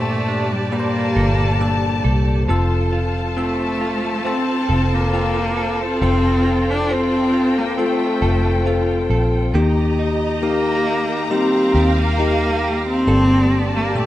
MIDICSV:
0, 0, Header, 1, 6, 480
1, 0, Start_track
1, 0, Tempo, 882353
1, 1352, Time_signature, 4, 2, 24, 8
1, 7649, End_track
2, 0, Start_track
2, 0, Title_t, "String section"
2, 0, Program_c, 0, 48
2, 0, Note_on_c, 0, 67, 67
2, 0, Note_on_c, 0, 74, 62
2, 0, Note_on_c, 0, 81, 83
2, 373, Note_off_c, 0, 81, 0
2, 391, Note_on_c, 0, 81, 86
2, 1328, Note_off_c, 0, 67, 0
2, 1332, Note_off_c, 0, 74, 0
2, 1342, Note_off_c, 0, 81, 0
2, 1352, Note_on_c, 0, 69, 64
2, 1354, Note_on_c, 0, 65, 72
2, 1354, Note_on_c, 0, 72, 63
2, 1354, Note_on_c, 0, 81, 79
2, 3254, Note_off_c, 0, 81, 0
2, 3277, Note_on_c, 0, 79, 74
2, 5171, Note_off_c, 0, 65, 0
2, 5171, Note_off_c, 0, 69, 0
2, 5171, Note_off_c, 0, 72, 0
2, 5176, Note_off_c, 0, 79, 0
2, 5187, Note_on_c, 0, 67, 70
2, 5188, Note_on_c, 0, 75, 64
2, 5189, Note_on_c, 0, 82, 74
2, 6141, Note_off_c, 0, 75, 0
2, 6154, Note_on_c, 0, 77, 73
2, 7091, Note_off_c, 0, 67, 0
2, 7091, Note_off_c, 0, 82, 0
2, 7104, Note_off_c, 0, 77, 0
2, 7110, Note_on_c, 0, 67, 75
2, 7110, Note_on_c, 0, 74, 65
2, 7110, Note_on_c, 0, 81, 76
2, 7649, Note_off_c, 0, 67, 0
2, 7649, Note_off_c, 0, 74, 0
2, 7649, Note_off_c, 0, 81, 0
2, 7649, End_track
3, 0, Start_track
3, 0, Title_t, "Tine electric piano"
3, 0, Program_c, 1, 4
3, 0, Control_c, 1, 64, 127
3, 0, Note_on_c, 1, 43, 58
3, 0, Note_on_c, 1, 46, 65
3, 0, Note_on_c, 1, 58, 64
3, 0, Note_on_c, 1, 67, 63
3, 0, Note_on_c, 1, 69, 75
3, 0, Note_on_c, 1, 72, 72
3, 132, Note_off_c, 1, 43, 0
3, 368, Note_off_c, 1, 46, 0
3, 370, Note_off_c, 1, 67, 0
3, 372, Note_off_c, 1, 72, 0
3, 389, Note_off_c, 1, 58, 0
3, 389, Note_on_c, 1, 58, 69
3, 392, Note_on_c, 1, 67, 61
3, 397, Note_on_c, 1, 71, 60
3, 430, Note_off_c, 1, 71, 0
3, 432, Note_on_c, 1, 72, 75
3, 847, Note_off_c, 1, 58, 0
3, 848, Note_off_c, 1, 67, 0
3, 868, Note_off_c, 1, 72, 0
3, 870, Note_on_c, 1, 58, 65
3, 875, Note_on_c, 1, 67, 60
3, 879, Note_off_c, 1, 69, 0
3, 879, Note_on_c, 1, 69, 75
3, 1327, Note_off_c, 1, 58, 0
3, 1330, Note_off_c, 1, 67, 0
3, 1331, Note_off_c, 1, 69, 0
3, 1353, Note_on_c, 1, 60, 76
3, 1357, Note_on_c, 1, 65, 71
3, 1359, Control_c, 1, 64, 0
3, 1362, Note_on_c, 1, 69, 84
3, 1443, Control_c, 1, 64, 127
3, 1809, Note_off_c, 1, 60, 0
3, 1811, Note_off_c, 1, 65, 0
3, 1813, Note_off_c, 1, 69, 0
3, 1831, Note_on_c, 1, 60, 66
3, 1836, Note_on_c, 1, 65, 65
3, 1840, Note_on_c, 1, 69, 76
3, 2288, Note_off_c, 1, 60, 0
3, 2290, Note_off_c, 1, 65, 0
3, 2292, Note_off_c, 1, 69, 0
3, 2314, Note_on_c, 1, 60, 68
3, 2319, Note_on_c, 1, 65, 66
3, 2322, Note_on_c, 1, 69, 78
3, 2769, Note_off_c, 1, 60, 0
3, 2772, Note_off_c, 1, 65, 0
3, 2773, Note_off_c, 1, 69, 0
3, 2793, Note_on_c, 1, 60, 68
3, 2796, Note_on_c, 1, 65, 61
3, 2800, Note_on_c, 1, 69, 72
3, 3249, Note_off_c, 1, 60, 0
3, 3250, Note_off_c, 1, 65, 0
3, 3252, Note_off_c, 1, 69, 0
3, 3273, Note_on_c, 1, 60, 64
3, 3277, Note_on_c, 1, 65, 62
3, 3282, Note_on_c, 1, 69, 74
3, 3729, Note_off_c, 1, 60, 0
3, 3731, Note_off_c, 1, 65, 0
3, 3733, Note_off_c, 1, 69, 0
3, 3750, Note_on_c, 1, 60, 68
3, 3754, Note_on_c, 1, 65, 63
3, 3759, Note_on_c, 1, 72, 71
3, 4207, Note_off_c, 1, 60, 0
3, 4209, Note_off_c, 1, 65, 0
3, 4212, Note_off_c, 1, 72, 0
3, 4233, Note_on_c, 1, 60, 64
3, 4236, Note_on_c, 1, 65, 64
3, 4239, Note_on_c, 1, 69, 77
3, 4689, Note_off_c, 1, 60, 0
3, 4690, Note_off_c, 1, 65, 0
3, 4692, Note_off_c, 1, 69, 0
3, 4710, Note_on_c, 1, 60, 64
3, 4712, Note_on_c, 1, 65, 58
3, 4718, Note_on_c, 1, 69, 71
3, 5167, Note_off_c, 1, 60, 0
3, 5168, Note_off_c, 1, 65, 0
3, 5171, Note_off_c, 1, 69, 0
3, 5189, Note_on_c, 1, 58, 76
3, 5192, Note_on_c, 1, 51, 65
3, 5194, Note_on_c, 1, 63, 68
3, 5197, Note_on_c, 1, 67, 87
3, 5200, Control_c, 1, 64, 0
3, 5295, Control_c, 1, 64, 127
3, 5647, Note_off_c, 1, 58, 0
3, 5649, Note_off_c, 1, 63, 0
3, 5651, Note_off_c, 1, 67, 0
3, 5667, Note_on_c, 1, 58, 68
3, 5672, Note_on_c, 1, 63, 63
3, 5673, Note_on_c, 1, 67, 77
3, 5891, Note_off_c, 1, 51, 0
3, 6126, Note_off_c, 1, 58, 0
3, 6128, Note_off_c, 1, 63, 0
3, 6129, Note_off_c, 1, 67, 0
3, 6146, Note_on_c, 1, 58, 68
3, 6152, Note_on_c, 1, 63, 62
3, 6154, Note_on_c, 1, 67, 78
3, 6605, Note_off_c, 1, 58, 0
3, 6608, Note_off_c, 1, 63, 0
3, 6609, Note_off_c, 1, 67, 0
3, 6627, Note_on_c, 1, 58, 66
3, 6632, Note_on_c, 1, 63, 61
3, 6635, Note_on_c, 1, 67, 74
3, 7086, Note_off_c, 1, 58, 0
3, 7088, Note_off_c, 1, 63, 0
3, 7090, Note_off_c, 1, 67, 0
3, 7108, Note_on_c, 1, 58, 64
3, 7112, Note_on_c, 1, 67, 59
3, 7113, Note_on_c, 1, 43, 55
3, 7115, Note_on_c, 1, 69, 74
3, 7120, Control_c, 1, 64, 0
3, 7221, Control_c, 1, 64, 127
3, 7566, Note_off_c, 1, 58, 0
3, 7568, Note_off_c, 1, 67, 0
3, 7570, Note_off_c, 1, 69, 0
3, 7587, Note_on_c, 1, 46, 71
3, 7592, Note_on_c, 1, 67, 64
3, 7596, Note_on_c, 1, 69, 73
3, 7649, Note_off_c, 1, 43, 0
3, 7649, Note_off_c, 1, 46, 0
3, 7649, Note_off_c, 1, 67, 0
3, 7649, Note_off_c, 1, 69, 0
3, 7649, End_track
4, 0, Start_track
4, 0, Title_t, "Clean electric guitar"
4, 0, Program_c, 2, 27
4, 0, Note_on_c, 2, 43, 76
4, 0, Note_on_c, 2, 55, 63
4, 0, Note_on_c, 2, 62, 60
4, 0, Note_on_c, 2, 69, 67
4, 147, Note_off_c, 2, 62, 0
4, 154, Note_on_c, 2, 62, 58
4, 379, Note_off_c, 2, 55, 0
4, 393, Note_on_c, 2, 55, 66
4, 631, Note_off_c, 2, 69, 0
4, 633, Note_on_c, 2, 69, 62
4, 866, Note_off_c, 2, 62, 0
4, 873, Note_on_c, 2, 62, 62
4, 1110, Note_off_c, 2, 69, 0
4, 1112, Note_on_c, 2, 69, 66
4, 1349, Note_off_c, 2, 55, 0
4, 1351, Note_on_c, 2, 53, 76
4, 1353, Note_off_c, 2, 43, 0
4, 1353, Note_off_c, 2, 69, 0
4, 1355, Note_on_c, 2, 69, 66
4, 1401, Note_off_c, 2, 62, 0
4, 1592, Note_on_c, 2, 65, 61
4, 1832, Note_on_c, 2, 60, 57
4, 2067, Note_off_c, 2, 65, 0
4, 2073, Note_on_c, 2, 65, 61
4, 2306, Note_off_c, 2, 60, 0
4, 2313, Note_on_c, 2, 60, 65
4, 2543, Note_off_c, 2, 69, 0
4, 2550, Note_on_c, 2, 69, 63
4, 2786, Note_off_c, 2, 65, 0
4, 2793, Note_on_c, 2, 65, 59
4, 3025, Note_off_c, 2, 69, 0
4, 3031, Note_on_c, 2, 69, 63
4, 3267, Note_off_c, 2, 53, 0
4, 3269, Note_off_c, 2, 69, 0
4, 3274, Note_on_c, 2, 53, 73
4, 3276, Note_on_c, 2, 69, 64
4, 3507, Note_off_c, 2, 65, 0
4, 3513, Note_on_c, 2, 65, 62
4, 3745, Note_off_c, 2, 60, 0
4, 3752, Note_on_c, 2, 60, 55
4, 3985, Note_off_c, 2, 65, 0
4, 3991, Note_on_c, 2, 65, 56
4, 4225, Note_off_c, 2, 60, 0
4, 4231, Note_on_c, 2, 60, 62
4, 4465, Note_off_c, 2, 69, 0
4, 4471, Note_on_c, 2, 69, 62
4, 4707, Note_off_c, 2, 65, 0
4, 4713, Note_on_c, 2, 65, 59
4, 4946, Note_off_c, 2, 69, 0
4, 4953, Note_on_c, 2, 69, 60
4, 5190, Note_on_c, 2, 51, 72
4, 5193, Note_off_c, 2, 53, 0
4, 5193, Note_off_c, 2, 69, 0
4, 5195, Note_on_c, 2, 67, 61
4, 5240, Note_off_c, 2, 60, 0
4, 5241, Note_off_c, 2, 65, 0
4, 5435, Note_on_c, 2, 63, 60
4, 5673, Note_on_c, 2, 58, 55
4, 5905, Note_off_c, 2, 63, 0
4, 5912, Note_on_c, 2, 63, 57
4, 6151, Note_on_c, 2, 55, 65
4, 6390, Note_off_c, 2, 67, 0
4, 6392, Note_on_c, 2, 67, 60
4, 6626, Note_off_c, 2, 63, 0
4, 6633, Note_on_c, 2, 63, 61
4, 6872, Note_off_c, 2, 67, 0
4, 6874, Note_on_c, 2, 67, 64
4, 7111, Note_off_c, 2, 51, 0
4, 7115, Note_off_c, 2, 67, 0
4, 7115, Note_on_c, 2, 43, 77
4, 7117, Note_on_c, 2, 69, 66
4, 7161, Note_off_c, 2, 63, 0
4, 7354, Note_on_c, 2, 62, 62
4, 7577, Note_off_c, 2, 58, 0
4, 7649, Note_off_c, 2, 43, 0
4, 7649, Note_off_c, 2, 55, 0
4, 7649, Note_off_c, 2, 62, 0
4, 7649, Note_off_c, 2, 69, 0
4, 7649, End_track
5, 0, Start_track
5, 0, Title_t, "Cello"
5, 0, Program_c, 3, 42
5, 0, Note_on_c, 3, 57, 91
5, 283, Note_on_c, 3, 55, 77
5, 291, Note_off_c, 3, 57, 0
5, 397, Note_on_c, 3, 58, 88
5, 405, Note_off_c, 3, 55, 0
5, 1115, Note_off_c, 3, 58, 0
5, 1844, Note_on_c, 3, 57, 86
5, 2330, Note_on_c, 3, 60, 89
5, 2338, Note_off_c, 3, 57, 0
5, 2688, Note_on_c, 3, 58, 94
5, 2696, Note_off_c, 3, 60, 0
5, 3167, Note_on_c, 3, 60, 102
5, 3175, Note_off_c, 3, 58, 0
5, 3646, Note_on_c, 3, 62, 96
5, 3654, Note_off_c, 3, 60, 0
5, 3767, Note_on_c, 3, 60, 102
5, 3775, Note_off_c, 3, 62, 0
5, 4125, Note_on_c, 3, 58, 83
5, 4133, Note_off_c, 3, 60, 0
5, 4239, Note_off_c, 3, 58, 0
5, 4246, Note_on_c, 3, 57, 81
5, 4937, Note_off_c, 3, 57, 0
5, 5674, Note_on_c, 3, 58, 99
5, 6132, Note_off_c, 3, 58, 0
5, 6160, Note_on_c, 3, 60, 96
5, 6521, Note_on_c, 3, 58, 103
5, 6530, Note_off_c, 3, 60, 0
5, 6997, Note_off_c, 3, 58, 0
5, 7004, Note_on_c, 3, 60, 110
5, 7456, Note_off_c, 3, 60, 0
5, 7485, Note_on_c, 3, 58, 83
5, 7606, Note_on_c, 3, 57, 94
5, 7614, Note_off_c, 3, 58, 0
5, 7649, Note_off_c, 3, 57, 0
5, 7649, End_track
6, 0, Start_track
6, 0, Title_t, "Fingered electric bass"
6, 0, Program_c, 4, 33
6, 0, Note_on_c, 4, 31, 87
6, 611, Note_off_c, 4, 31, 0
6, 633, Note_on_c, 4, 31, 93
6, 1091, Note_off_c, 4, 31, 0
6, 1113, Note_on_c, 4, 36, 84
6, 1336, Note_off_c, 4, 36, 0
6, 1353, Note_on_c, 4, 29, 92
6, 2531, Note_off_c, 4, 29, 0
6, 2554, Note_on_c, 4, 29, 91
6, 3252, Note_off_c, 4, 29, 0
6, 3272, Note_on_c, 4, 29, 92
6, 4451, Note_off_c, 4, 29, 0
6, 4471, Note_on_c, 4, 29, 97
6, 4930, Note_off_c, 4, 29, 0
6, 4948, Note_on_c, 4, 34, 83
6, 5173, Note_off_c, 4, 34, 0
6, 5190, Note_on_c, 4, 39, 85
6, 6369, Note_off_c, 4, 39, 0
6, 6389, Note_on_c, 4, 39, 95
6, 7089, Note_off_c, 4, 39, 0
6, 7111, Note_on_c, 4, 31, 90
6, 7649, Note_off_c, 4, 31, 0
6, 7649, End_track
0, 0, End_of_file